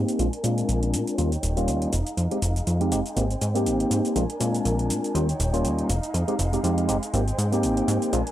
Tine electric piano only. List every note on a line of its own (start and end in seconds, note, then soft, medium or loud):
0.00 0.16 A#3 medium
0.00 0.17 C4 medium
0.00 0.17 D#4 medium
0.00 0.17 G4 medium
0.19 0.26 G#3 medium
0.19 0.26 C4 medium
0.19 0.26 D4 medium
0.19 0.27 F4 loud
0.43 1.16 G#3 medium
0.43 1.16 C4 medium
0.43 1.16 D4 medium
0.43 1.16 F4 medium
1.18 1.29 G3 medium
1.18 1.30 A#3 medium
1.18 1.30 C#4 medium
1.18 1.30 F4 medium
1.56 1.91 G3 medium
1.56 1.91 A#3 medium
1.56 1.92 C#4 medium
1.56 1.92 F4 loud
2.31 2.37 G#3 medium
2.31 2.37 C4 medium
2.31 2.37 D#4 medium
2.31 2.37 G4 medium
2.80 2.90 G#3 medium
2.80 2.90 C4 medium
2.80 2.90 D#4 medium
2.80 2.90 G4 medium
2.91 2.99 G#3 medium
2.91 2.99 C4 medium
2.91 2.99 D#4 medium
2.91 2.99 G4 medium
3.16 3.24 A#3 medium
3.16 3.24 C4 medium
3.16 3.24 D#4 medium
3.16 3.24 G4 medium
3.54 4.13 A#3 medium
3.54 4.13 C4 medium
3.54 4.14 D#4 medium
3.54 4.14 G4 loud
4.15 4.23 G#3 medium
4.15 4.23 C4 medium
4.15 4.23 D4 medium
4.15 4.23 F4 loud
4.40 5.12 G#3 medium
4.40 5.12 C4 medium
4.40 5.13 D4 medium
4.40 5.13 F4 medium
5.14 5.26 G3 medium
5.14 5.26 A#3 medium
5.14 5.26 C#4 medium
5.14 5.26 F4 medium
5.53 5.88 G3 medium
5.53 5.88 A#3 medium
5.53 5.88 C#4 medium
5.53 5.88 F4 loud
6.28 6.34 G#3 medium
6.28 6.34 C4 medium
6.28 6.34 D#4 medium
6.28 6.34 G4 loud
6.53 6.58 G#3 medium
6.53 6.59 C4 medium
6.53 6.59 D#4 medium
6.53 6.59 G4 medium
6.64 6.86 G#3 medium
6.64 6.86 C4 medium
6.64 6.86 D#4 medium
6.64 6.86 G4 medium
6.88 6.96 G#3 loud
6.88 6.96 C4 medium
6.88 6.96 D#4 medium
6.88 6.96 G4 loud
7.13 7.21 A#3 medium
7.13 7.21 C4 medium
7.13 7.21 D#4 medium
7.13 7.21 G4 medium
7.52 8.10 A#3 medium
7.52 8.10 C4 medium
7.52 8.11 D#4 medium
7.52 8.11 G4 loud
8.13 8.20 G#3 medium
8.13 8.20 C4 medium
8.13 8.20 D4 medium
8.13 8.20 F4 loud